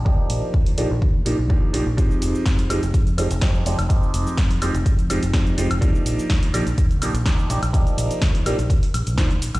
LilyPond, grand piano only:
\new Staff \with { instrumentName = "Grand piano" } { \time 4/4 \key ees \major \tempo 4 = 125 <f bes d' ees' g'>4. <f bes d' ees' g'>8 r8 <f bes d' ees' g'>8 <f bes d' ees' g'>8 <f bes d' ees' g'>8 | <f aes c' ees' g'>4. <f aes c' ees' g'>8 r8 <f aes c' ees' g'>8 <f aes c' ees' g'>8 <f aes c' ees' g'>8 | <f aes c' ees' g'>4. <f aes c' ees' g'>8 r8 <f aes c' ees' g'>8 <f aes c' ees' g'>8 <f aes c' ees' g'>8 | <f bes d' ees' g'>4. <f bes d' ees' g'>8 r8 <f bes d' ees' g'>8 <f bes d' ees' g'>8 <f bes d' ees' g'>8 |
<f bes d' ees' g'>4. <f bes d' ees' g'>8 r4 <f bes d' ees' c''>8 r8 | }